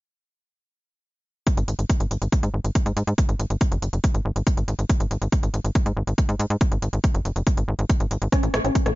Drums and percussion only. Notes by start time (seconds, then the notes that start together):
1.47 kick, closed hi-hat
1.57 closed hi-hat
1.68 closed hi-hat
1.79 closed hi-hat
1.90 kick, closed hi-hat
2.00 closed hi-hat
2.11 closed hi-hat
2.22 closed hi-hat
2.32 kick, closed hi-hat
2.43 closed hi-hat
2.65 closed hi-hat
2.75 kick, closed hi-hat
2.86 closed hi-hat
2.97 closed hi-hat
3.07 closed hi-hat
3.18 kick, closed hi-hat
3.29 closed hi-hat
3.40 closed hi-hat
3.50 closed hi-hat
3.61 kick, closed hi-hat
3.72 closed hi-hat
3.82 closed hi-hat
3.93 closed hi-hat
4.04 kick, closed hi-hat
4.15 closed hi-hat
4.36 closed hi-hat
4.47 kick, closed hi-hat
4.57 closed hi-hat
4.68 closed hi-hat
4.79 closed hi-hat
4.90 kick, closed hi-hat
5.00 closed hi-hat
5.11 closed hi-hat
5.22 closed hi-hat
5.32 kick, closed hi-hat
5.43 closed hi-hat
5.54 closed hi-hat
5.65 closed hi-hat
5.75 kick, closed hi-hat
5.86 closed hi-hat
6.07 closed hi-hat
6.18 kick, closed hi-hat
6.29 closed hi-hat
6.40 closed hi-hat
6.50 closed hi-hat
6.61 kick, closed hi-hat
6.72 closed hi-hat
6.82 closed hi-hat
6.93 closed hi-hat
7.04 kick, closed hi-hat
7.15 closed hi-hat
7.25 closed hi-hat
7.36 closed hi-hat
7.47 kick, closed hi-hat
7.57 closed hi-hat
7.79 closed hi-hat
7.90 kick, closed hi-hat
8.00 closed hi-hat
8.11 closed hi-hat
8.22 closed hi-hat
8.32 kick, cross-stick, closed hi-hat
8.43 closed hi-hat
8.54 cross-stick, closed hi-hat
8.65 closed hi-hat
8.75 kick, closed hi-hat
8.86 cross-stick, closed hi-hat